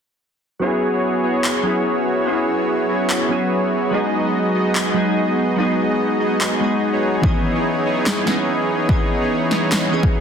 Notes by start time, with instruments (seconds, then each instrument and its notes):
0.59 synth keys F#3 B3 C#4 E4, ambient pad F#3 C#4 G#4 E5, supersaw synth B3 E4 F#4 G#4 C#5
0.64 synth keys G#4
0.93 supersaw synth B3 E4 F#4 G#4 C#5
1.23 supersaw synth B3 E4 F#4 G#4 C#5
1.44 clap
1.63 synth keys F#3 B3 C#4 E4 G#4
2.25 synth keys F#3 B3 C#4 E4 G#4, supersaw synth B3 E4 F#4 G#4 C#5
2.58 supersaw synth B3 E4 F#4 G#4 C#5
2.89 supersaw synth B3 E4 F#4 G#4 C#5
3.10 clap
3.28 synth keys F#3 B3 C#4 E4
3.32 synth keys G#4
3.90 synth keys F#3 G#3 B3 D#4 G#4, supersaw synth B3 D#4 F#4 G#4 D#5, ambient pad B3 D#5
4.24 supersaw synth B3 D#4 F#4 G#4 D#5
4.54 supersaw synth B3 D#4 F#4 G#4 D#5
4.75 clap
4.94 synth keys F#3 G#3 B3 D#4 G#4
5.56 synth keys F#3 G#3 B3 D#4, supersaw synth B3 D#4 F#4 G#4 D#5
5.60 synth keys G#4
5.89 supersaw synth B3 D#4 F#4 G#4 D#5
6.20 supersaw synth B3 D#4 F#4 G#4 D#5
6.41 clap
6.60 synth keys F#3 G#3 B3 D#4
6.64 synth keys G#4
6.93 supersaw synth B3 D#4 F#4 G#4 C#5
7.22 synth keys E3 B3 C#4 G#4 D#5, ambient pad E3 C#4 B4, supersaw synth B3 D#4 E4 G#4, kick
7.55 supersaw synth B3 D#4 E4 G#4 C#5
7.86 supersaw synth B3 D#4 E4 G#4 C#5
8.06 snare, clap
8.25 synth keys E3 B3 C#4 G#4 D#5, snare
8.87 synth keys E3 B3 C#4 G#4 D#5, kick
9.20 supersaw synth B3 D#4 E4 G#4 C#5
9.51 supersaw synth B3 D#4 E4 G#4 C#5, snare
9.72 snare, clap
9.91 synth keys E3 B3 C#4 G#4 D#5
10.03 kick